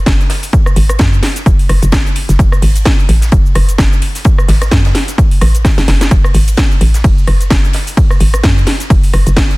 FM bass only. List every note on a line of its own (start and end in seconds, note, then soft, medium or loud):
0.07 0.28 F#1 loud
0.76 0.98 G#1 loud
1.00 1.21 F#2 loud
1.46 1.68 F#1 loud
1.69 1.80 F#1 loud
1.83 2.27 F#1 loud
2.29 2.38 F#1 loud
2.39 2.61 F#1 loud
2.62 2.84 G#1 loud
3.09 3.31 A1 loud
3.32 3.54 F#1 loud
3.55 3.77 F#1 medium
3.79 4.00 F#1 loud
4.48 4.70 G#1 loud
4.72 4.93 F#2 loud
5.42 5.76 A1 loud
5.78 5.86 F#1 loud
5.88 6.10 F#1 medium
6.11 6.33 F#1 medium
6.34 6.56 G#1 loud
6.81 7.03 A1 loud
7.04 7.26 F#1 loud
7.28 7.49 F#1 loud
7.51 7.72 F#1 loud
8.20 8.42 G#1 medium
8.44 8.65 F#2 loud
8.90 9.12 F#1 loud
9.14 9.25 F#1 loud
9.27 9.57 F#1 loud